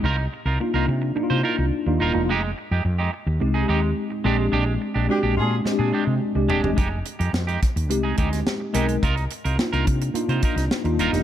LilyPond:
<<
  \new Staff \with { instrumentName = "Horn section" } { \time 4/4 \key f \dorian \tempo 4 = 107 r1 | r1 | r4 <c' d' g'>16 r16 <d' f' aes'>8 r2 | r1 |
r1 | }
  \new Staff \with { instrumentName = "Clean electric guitar" } { \time 4/4 \key f \dorian <ees' f' bes'>16 r8 <ees' f' bes'>16 r16 <ees' f' bes'>16 r8. <ees' f' c''>16 <ees' f' bes'>16 r8. <ees' f' bes'>16 r16 | <aes ees' g'>16 r8 <aes ees' g'>16 r16 <aes ees' g'>16 r8. <aes ees' aes'>16 <aes ees' g'>16 r8. <aes d' g'>16 r16 | <aes d' g'>16 r8 <aes d' g'>16 r16 <aes d' g'>16 r8. <aes d' aes'>16 <aes d' g'>16 r8. <aes d' g'>16 r16 | <aes ees' g'>16 r8 <aes ees' g'>16 r16 <aes ees' g'>16 r8. <aes ees' aes'>16 <aes ees' g'>16 r8. <aes ees' g'>16 r16 |
<ees' f' bes'>16 r8 <ees' f' bes'>16 r16 <ees' f' bes'>16 r8. <ees' f' c''>16 <ees' f' bes'>16 r8. <ees' f' bes'>16 r16 | }
  \new Staff \with { instrumentName = "Tine electric piano" } { \time 4/4 \key f \dorian r4 <bes d' ees' f'>8. r16 <bes d' ees' e' f'>4 r16 <bes d' ees' f'>8 <bes d' ees' f'>16 | r2 <aes c' ees' g'>4~ <aes c' ees' g'>16 r16 <aes c' d' g'>8~ | <aes c' d' g'>8. r16 <aes c' d' ges' g'>8. r16 <aes c' d' g'>4 r16 <aes c' d' g'>8 <aes c' d' g'>16 | r2 <aes c' ees' g'>4~ <aes c' ees' g'>16 r16 <aes c' ees' bes'>8 |
r4 <bes d' ees' f'>8. r16 <bes d' ees' f'>4 r16 <bes d' ees' f'>8 <bes d' ees' g'>16 | }
  \new Staff \with { instrumentName = "Fretless electric bass" } { \clef bass \time 4/4 \key f \dorian c,8 r16 c,16 r16 c,16 c8 r16 c16 r16 c,16 r16 ees,16 ees,,16 e,,16 | f,,8 r16 f,16 f,8 r16 ees,16 c,8 ees,8 r8 bes,,8 | bes,,8 r16 bes,,16 r16 bes,,16 bes,8 r16 bes,16 r16 c16 r16 c,16 ees,,16 e,,16 | f,,8 r16 f,16 f,8 r16 ees,16 c,8 d,8 r8 b,,8 |
c,8 r16 c,16 r16 c,16 c8 r16 c16 r16 c,16 r16 ees,16 ees,,16 e,,16 | }
  \new DrumStaff \with { instrumentName = "Drums" } \drummode { \time 4/4 r4 r4 r4 r4 | r4 r4 r4 r4 | r4 r4 sn4 r8 tomfh16 tomfh16 | <hh bd>8 hh16 hh16 sn16 hh16 <hh bd sn>16 hh16 hh8 <hh bd>16 <hh sn>16 sn8 hh16 hh16 |
<hh bd>16 hh16 hh16 hh16 sn16 hh16 <hh bd>16 hh16 hh16 hh16 <hh bd>16 <hh sn>16 sn16 hh16 hh16 <hh sn>16 | }
>>